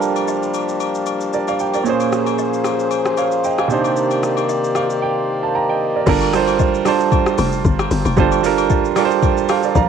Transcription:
0.00 3.66 F3 medium
0.00 1.81 G3 medium
0.00 1.82 G3 medium
0.00 1.82 A#3 medium
0.00 1.81 D4 medium
0.00 1.82 D4 medium
0.00 1.82 F4 medium
0.00 1.82 G4 medium
0.00 1.31 A4 medium
0.00 1.32 A#4 medium
0.00 shaker loud
0.16 high agogo medium
0.16 shaker soft
0.28 low woodblock medium
0.28 shaker medium
0.43 shaker soft
0.54 high agogo medium
0.54 shaker medium
0.69 shaker soft
0.80 high agogo medium
0.80 shaker medium
0.95 shaker medium
1.06 high agogo medium
1.06 shaker medium
1.21 shaker medium
1.33 1.48 A#4 medium
1.33 1.47 D5 medium
1.33 shaker medium
1.48 1.60 D5 medium
1.48 1.59 F5 medium
1.48 high agogo medium
1.48 shaker soft
1.60 1.74 G5 medium
1.60 shaker medium
1.74 2.00 A#4 medium
1.74 1.99 D5 medium
1.74 high agogo medium
1.74 shaker medium
1.84 3.65 A#2 medium
1.84 3.66 A#3 medium
1.84 3.68 A#3 medium
1.84 3.68 C#4 medium
1.84 3.67 C#4 medium
1.84 3.68 G#4 medium
1.84 6.03 C5 medium
1.84 shaker medium
1.88 3.67 G#4 medium
1.88 3.17 C5 medium
2.00 high agogo medium
2.00 shaker medium
2.12 cross-stick medium
2.12 shaker medium
2.26 high agogo medium
2.26 shaker medium
2.38 low woodblock medium
2.38 shaker medium
2.53 shaker soft
2.64 cross-stick medium
2.64 high agogo medium
2.64 shaker medium
2.80 shaker soft
2.91 high agogo medium
2.91 shaker medium
3.06 cross-stick loud
3.06 shaker medium
3.17 3.43 C#5 medium
3.17 3.43 F5 medium
3.17 high agogo medium
3.17 shaker medium
3.32 shaker medium
3.44 3.58 D#5 medium
3.44 3.58 G5 medium
3.44 shaker medium
3.58 3.84 F5 medium
3.58 3.84 G#5 medium
3.58 cross-stick medium
3.58 high agogo medium
3.58 shaker medium
3.68 5.75 C3 medium
3.68 6.04 D#3 medium
3.68 5.76 A#3 medium
3.68 6.04 A#3 medium
3.68 5.77 D4 medium
3.68 6.04 G4 medium
3.68 6.04 D5 medium
3.68 shaker medium
3.72 5.78 D#4 medium
3.72 5.27 C5 medium
3.84 high agogo medium
3.84 shaker medium
3.97 shaker medium
4.11 high agogo medium
4.11 shaker medium
4.23 cross-stick medium
4.23 shaker loud
4.37 high agogo medium
4.37 shaker medium
4.49 low woodblock medium
4.49 shaker medium
4.64 shaker soft
4.75 5.00 F5 medium
4.75 cross-stick medium
4.75 high agogo medium
4.75 shaker medium
4.90 shaker soft
5.02 5.26 G5 medium
5.43 5.54 F5 medium
5.43 5.54 A5 medium
5.55 5.68 G5 medium
5.55 6.04 A#5 medium
5.70 5.94 D#5 medium
5.70 5.94 G5 medium
5.96 6.08 A#4 medium
5.96 6.20 D5 medium
6.06 6.82 G1 loud
6.06 6.28 G3 medium
6.06 6.28 D4 medium
6.06 6.29 F4 medium
6.06 6.29 A4 medium
6.06 6.30 A#4 loud
6.06 kick loud
6.06 crash loud
6.06 shaker medium
6.21 high agogo medium
6.21 shaker medium
6.33 6.76 G3 medium
6.33 6.76 D4 medium
6.33 6.77 F4 medium
6.33 6.77 A4 medium
6.33 6.77 C5 loud
6.33 cross-stick loud
6.33 open hi-hat medium
6.33 shaker loud
6.47 high agogo medium
6.47 shaker medium
6.59 kick medium
6.59 low woodblock medium
6.59 shaker medium
6.74 shaker soft
6.85 7.70 G3 medium
6.85 7.71 D4 medium
6.85 7.71 F4 medium
6.85 7.71 A4 medium
6.85 7.72 C5 loud
6.85 cross-stick medium
6.85 open hi-hat medium
6.85 high agogo medium
6.85 shaker medium
7.00 shaker medium
7.12 kick loud
7.12 high agogo medium
7.12 shaker medium
7.26 cross-stick loud
7.26 shaker medium
7.38 7.63 F1 loud
7.38 open hi-hat medium
7.38 high agogo medium
7.38 shaker medium
7.52 shaker medium
7.65 7.89 G1 medium
7.65 kick loud
7.65 shaker medium
7.79 cross-stick loud
7.79 high agogo medium
7.79 shaker medium
7.91 8.04 G1 medium
7.91 open hi-hat medium
7.91 shaker medium
8.05 8.16 F1 medium
8.05 high agogo medium
8.05 shaker medium
8.17 8.92 G1 loud
8.17 8.39 G3 medium
8.17 8.39 D4 medium
8.17 8.39 F4 medium
8.17 8.40 A4 medium
8.17 8.40 C5 loud
8.17 kick loud
8.17 shaker medium
8.32 high agogo medium
8.32 shaker medium
8.43 8.86 G3 medium
8.43 8.87 D4 medium
8.43 8.87 F4 medium
8.43 8.88 A4 medium
8.43 8.88 A#4 medium
8.43 open hi-hat medium
8.43 shaker loud
8.58 high agogo medium
8.58 shaker medium
8.70 kick medium
8.70 low woodblock medium
8.70 shaker medium
8.85 shaker soft
8.96 9.81 G3 medium
8.96 9.81 D4 medium
8.96 9.81 F4 medium
8.96 9.49 A4 medium
8.96 9.04 A#4 medium
8.96 cross-stick medium
8.96 open hi-hat medium
8.96 high agogo medium
8.96 shaker medium
9.05 9.48 C5 loud
9.11 shaker medium
9.22 kick loud
9.22 high agogo medium
9.22 shaker medium
9.37 shaker medium
9.49 9.63 A4 medium
9.49 9.63 C5 medium
9.49 9.74 F5 medium
9.49 cross-stick loud
9.49 open hi-hat medium
9.49 high agogo medium
9.49 shaker loud
9.63 9.75 A#4 medium
9.63 9.75 D5 medium
9.63 shaker medium
9.75 9.89 A#1 loud
9.75 9.89 D5 medium
9.75 9.89 F5 medium
9.75 9.89 A#5 medium
9.75 kick loud
9.75 shaker medium

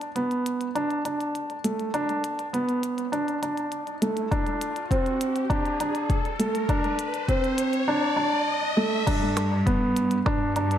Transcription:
0.00 closed hi-hat soft
0.00 riser medium
0.16 0.66 B3 medium
0.16 closed hi-hat soft
0.31 closed hi-hat soft
0.46 closed hi-hat medium
0.61 closed hi-hat soft
0.75 1.01 D4 medium
0.75 closed hi-hat soft
0.91 closed hi-hat soft
1.05 1.56 D4 medium
1.05 closed hi-hat medium
1.21 closed hi-hat soft
1.35 closed hi-hat soft
1.50 closed hi-hat soft
1.64 1.90 A3 medium
1.64 closed hi-hat medium
1.80 closed hi-hat soft
1.94 2.45 D4 medium
1.94 closed hi-hat soft
2.09 closed hi-hat soft
2.24 closed hi-hat medium
2.39 closed hi-hat soft
2.53 3.04 B3 medium
2.53 closed hi-hat soft
2.69 closed hi-hat soft
2.83 closed hi-hat medium
2.98 closed hi-hat soft
3.12 3.38 D4 medium
3.12 closed hi-hat soft
3.28 closed hi-hat soft
3.43 3.93 D4 medium
3.43 closed hi-hat medium
3.57 closed hi-hat soft
3.72 closed hi-hat soft
3.87 closed hi-hat soft
4.02 4.27 A3 medium
4.02 closed hi-hat medium
4.17 closed hi-hat soft
4.31 4.82 D4 loud
4.31 kick loud
4.31 closed hi-hat soft
4.47 closed hi-hat soft
4.61 closed hi-hat medium
4.76 closed hi-hat soft
4.91 5.42 C4 medium
4.91 kick loud
4.91 closed hi-hat soft
5.06 closed hi-hat soft
5.21 closed hi-hat medium
5.36 closed hi-hat soft
5.50 5.75 D4 medium
5.50 kick loud
5.50 closed hi-hat soft
5.66 closed hi-hat soft
5.80 6.31 D4 medium
5.80 closed hi-hat medium
5.95 closed hi-hat soft
6.10 kick loud
6.10 closed hi-hat soft
6.25 closed hi-hat soft
6.39 6.65 A3 medium
6.39 closed hi-hat medium
6.55 closed hi-hat soft
6.69 7.20 D4 medium
6.69 kick loud
6.69 closed hi-hat soft
6.84 closed hi-hat soft
6.99 closed hi-hat medium
7.14 closed hi-hat soft
7.28 7.79 C4 medium
7.28 kick loud
7.28 closed hi-hat soft
7.44 closed hi-hat soft
7.58 closed hi-hat medium
7.73 closed hi-hat soft
7.88 8.13 D4 medium
8.17 8.68 D4 medium
8.77 9.02 A3 medium
9.07 10.20 G2 loud
9.07 9.58 D4 medium
9.07 kick loud
9.07 closed hi-hat soft
9.07 crash loud
9.37 closed hi-hat medium
9.37 percussion blips medium
9.66 10.17 B3 medium
9.66 kick loud
9.66 closed hi-hat soft
9.97 closed hi-hat medium
10.11 closed hi-hat soft
10.26 10.78 G2 loud
10.26 10.51 D4 medium
10.26 kick loud
10.26 percussion blips medium
10.56 10.78 D4 medium
10.56 closed hi-hat medium
10.71 closed hi-hat soft

